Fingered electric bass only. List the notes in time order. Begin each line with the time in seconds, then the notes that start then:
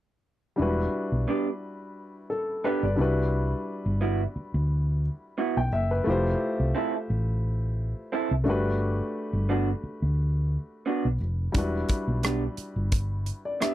0.59 E1
1.12 B1
2.83 G1
2.99 C2
3.86 G1
4.36 muted fingered electric bass stroke
4.54 D2
5.57 B1
5.72 F#1
6.07 F1
6.60 C2
7.10 A1
8.31 C2
8.46 G1
9.33 G1
9.83 muted fingered electric bass stroke
10.02 D2
11.05 B1
11.21 F1
11.55 E1
12.08 B1
12.58 muted fingered electric bass stroke
12.76 G1